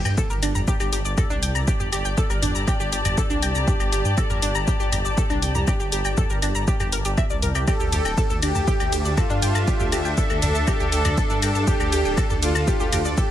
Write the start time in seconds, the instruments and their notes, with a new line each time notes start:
Already playing: string section G4, impact
0.05 detuned saw bass G2, synth arpeggio sound G5 G6, claves, shaker
0.17 synth arpeggio sound A4 A5, kick, shaker
0.30 detuned saw bass G1, synth arpeggio sound A#4 A#5, shaker
0.37 string section D5
0.43 detuned saw bass G1, synth arpeggio sound D4 D5, closed hi-hat, claves, shaker
0.55 detuned saw bass G1, string section A5, synth arpeggio sound A#5 A#6, mid tom, shaker
0.67 synth arpeggio sound G4 G5, kick, shaker
0.80 detuned saw bass G1, synth arpeggio sound G4 G5, claves, shaker
0.93 detuned saw bass G1, synth arpeggio sound G4 G5, closed hi-hat, shaker
1.05 detuned saw bass G1, synth arpeggio sound D5 D6, shaker
1.18 synth arpeggio sound A4 A5, kick, mid tom, claves, shaker
1.30 detuned saw bass C2, synth arpeggio sound D4 D5, shaker
1.42 detuned saw bass C2, synth arpeggio sound G5 G6, closed hi-hat, shaker
1.55 detuned saw bass C2, synth arpeggio sound A#5 A#6, claves, shaker
1.67 synth arpeggio sound G4 G5, kick, shaker
1.80 detuned saw bass G1, synth arpeggio sound G4 G5, mid tom, shaker
1.92 detuned saw bass G1, synth arpeggio sound G4 G5, closed hi-hat, claves, shaker
2.05 detuned saw bass G1, synth arpeggio sound G5 G6, shaker
2.17 synth arpeggio sound A4 A5, kick, shaker
2.30 detuned saw bass G1, synth arpeggio sound A#4 A#5, claves, shaker
2.42 detuned saw bass G1, synth arpeggio sound D4 D5, closed hi-hat, mid tom, shaker
2.55 detuned saw bass G1, synth arpeggio sound A#5 A#6, shaker
2.67 synth arpeggio sound G4 G5, kick, claves, shaker
2.80 detuned saw bass G1, synth arpeggio sound G4 G5, shaker
2.92 detuned saw bass G1, synth arpeggio sound G4 G5, closed hi-hat, shaker
3.05 detuned saw bass G1, synth arpeggio sound D5 D6, closed hi-hat, mid tom, claves, shaker
3.18 synth arpeggio sound A4 A5, kick, shaker
3.30 detuned saw bass C2, synth arpeggio sound D4 D5, shaker
3.42 detuned saw bass C2, synth arpeggio sound G5 G6, closed hi-hat, claves, shaker
3.55 detuned saw bass C2, synth arpeggio sound A#5 A#6, shaker
3.67 synth arpeggio sound G4 G5, kick, mid tom, shaker
3.80 detuned saw bass G1, synth arpeggio sound G4 G5, claves, shaker
3.92 detuned saw bass G1, synth arpeggio sound G4 G5, closed hi-hat, shaker
4.05 detuned saw bass G2, synth arpeggio sound G5 G6, shaker
4.17 synth arpeggio sound A4 A5, kick, claves, shaker
4.30 detuned saw bass G1, synth arpeggio sound A#4 A#5, mid tom, shaker
4.42 detuned saw bass G1, synth arpeggio sound D4 D5, closed hi-hat, shaker
4.55 detuned saw bass G1, synth arpeggio sound A#5 A#6, claves, shaker
4.67 synth arpeggio sound G4 G5, kick, shaker
4.80 detuned saw bass G1, synth arpeggio sound G4 G5, shaker
4.92 detuned saw bass G1, synth arpeggio sound G4 G5, closed hi-hat, mid tom, claves, shaker
5.05 detuned saw bass G1, synth arpeggio sound D5 D6, shaker
5.17 synth arpeggio sound A4 A5, kick, shaker
5.30 detuned saw bass C2, synth arpeggio sound D4 D5, claves, shaker
5.42 detuned saw bass C2, synth arpeggio sound G5 G6, closed hi-hat, shaker
5.55 detuned saw bass C2, synth arpeggio sound A#5 A#6, mid tom, shaker
5.67 synth arpeggio sound G4 G5, kick, claves, shaker
5.80 detuned saw bass G1, synth arpeggio sound G4 G5, shaker
5.92 detuned saw bass G1, synth arpeggio sound G4 G5, closed hi-hat, shaker
6.05 detuned saw bass G1, synth arpeggio sound G5 G6, claves, shaker
6.17 synth arpeggio sound A4 A5, kick, mid tom, shaker
6.30 detuned saw bass G1, synth arpeggio sound A#4 A#5, shaker
6.42 detuned saw bass G1, synth arpeggio sound D4 D5, closed hi-hat, claves, shaker
6.55 detuned saw bass G1, synth arpeggio sound A#5 A#6, shaker
6.67 synth arpeggio sound G4 G5, kick, shaker
6.80 detuned saw bass G1, synth arpeggio sound G4 G5, mid tom, claves, shaker
6.92 detuned saw bass G1, synth arpeggio sound A#4 A#5, closed hi-hat, shaker
7.05 detuned saw bass G1, synth arpeggio sound G4 G5, closed hi-hat, shaker
7.17 synth arpeggio sound E5 E6, kick, claves, shaker
7.30 detuned saw bass C2, synth arpeggio sound D5 D6, shaker
7.42 detuned saw bass C2, synth arpeggio sound A#4 A#5, closed hi-hat, mid tom, shaker
7.55 detuned saw bass C2, synth arpeggio sound G4 G5, claves, shaker
7.67 string section D4, synth arpeggio sound G4 G5, supersaw synth A4, kick, ride, claves, shaker
7.80 detuned saw bass D2, synth arpeggio sound G4 G5, shaker
7.92 detuned saw bass D2, synth arpeggio sound G4 G5, closed hi-hat, mid tom, ride, shaker
8.05 detuned saw bass D1, synth arpeggio sound G5 G6, claves, shaker
8.18 synth arpeggio sound A4 A5, string section A4, kick, ride, shaker
8.30 detuned saw bass D2, synth arpeggio sound A4 A5, shaker
8.42 detuned saw bass D2, synth arpeggio sound D4 D5, supersaw synth G4, closed hi-hat, ride, claves, shaker
8.55 detuned saw bass D2, synth arpeggio sound A5 A6, mid tom, shaker
8.67 synth arpeggio sound G4 G5, kick, ride, shaker
8.72 string section E5
8.80 detuned saw bass D2, synth arpeggio sound G4 G5, claves, shaker
8.92 detuned saw bass D2, synth arpeggio sound G4 G5, closed hi-hat, ride, shaker
9.05 detuned saw bass D2, synth arpeggio sound D5 D6, shaker
9.17 supersaw synth F4, synth arpeggio sound A4 A5, kick, mid tom, ride, claves, shaker
9.30 detuned saw bass G2, synth arpeggio sound D4 D5, shaker
9.42 detuned saw bass G2, synth arpeggio sound G5 G6, closed hi-hat, ride, shaker
9.55 detuned saw bass G2, synth arpeggio sound A5 A6, claves, shaker
9.67 synth arpeggio sound G4 G5, kick, ride, shaker
9.80 detuned saw bass D2, synth arpeggio sound G4 G5, mid tom, shaker
9.92 detuned saw bass D2, synth arpeggio sound G4 G5, closed hi-hat, ride, claves, shaker
10.05 detuned saw bass D2, synth arpeggio sound G5 G6, shaker
10.17 supersaw synth A4, synth arpeggio sound A4 A5, kick, ride, shaker
10.30 detuned saw bass D2, synth arpeggio sound A4 A5, claves, shaker
10.42 detuned saw bass D2, synth arpeggio sound D4 D5, closed hi-hat, mid tom, ride, shaker
10.55 detuned saw bass D2, synth arpeggio sound A5 A6, shaker
10.67 synth arpeggio sound G4 G5, kick, ride, claves, shaker
10.80 detuned saw bass D2, synth arpeggio sound G4 G5, shaker
10.92 detuned saw bass D2, synth arpeggio sound G4 G5, closed hi-hat, ride, shaker
11.05 detuned saw bass D2, synth arpeggio sound D5 D6, closed hi-hat, mid tom, claves, shaker
11.17 synth arpeggio sound A4 A5, kick, ride, shaker
11.30 detuned saw bass G2, synth arpeggio sound D4 D5, shaker
11.42 detuned saw bass G2, synth arpeggio sound G5 G6, closed hi-hat, ride, claves, shaker
11.55 detuned saw bass G2, synth arpeggio sound A5 A6, shaker
11.67 supersaw synth G4, synth arpeggio sound G4 G5, kick, mid tom, ride, shaker
11.80 detuned saw bass D2, synth arpeggio sound G4 G5, claves, shaker
11.92 detuned saw bass D2, synth arpeggio sound G4 G5, closed hi-hat, ride, shaker
12.05 detuned saw bass D1, synth arpeggio sound G5 G6, shaker
12.17 synth arpeggio sound A4 A5, kick, ride, claves, shaker
12.30 detuned saw bass D2, synth arpeggio sound A4 A5, mid tom, shaker
12.43 detuned saw bass D2, synth arpeggio sound D4 D5, supersaw synth F4, closed hi-hat, ride, shaker
12.55 detuned saw bass D2, synth arpeggio sound A5 A6, claves, shaker
12.68 synth arpeggio sound G4 G5, kick, ride, shaker
12.80 detuned saw bass D2, synth arpeggio sound G4 G5, shaker
12.93 detuned saw bass D2, synth arpeggio sound G4 G5, closed hi-hat, mid tom, ride, claves, shaker
13.05 detuned saw bass D2, synth arpeggio sound D5 D6, shaker
13.17 supersaw synth G4, synth arpeggio sound A4 A5, kick, ride, shaker